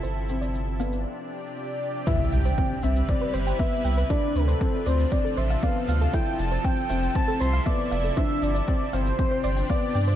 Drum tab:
SH |x-xxx-xx--------|x-xxx-xxx-xxx-xx|x-xxx-xxx-xxx-xx|x-xxx-xxx-xxx-xx|
BD |----------------|o---o---o---o---|o---o---o---o---|o---o---o---o---|

SH |x-xxx-xxx-xxx-xx|
BD |o---o---o---o---|